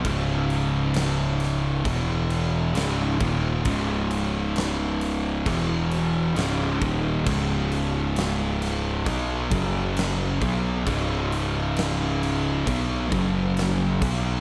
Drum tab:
CC |xxxxxxxx|xxxxxxxx|xxxxxxxx|xxxxxxxx|
SD |--oo--o-|--o---o-|--oo--o-|--o---o-|
BD |o---o--o|o---o--o|o---oo-o|o---oo-o|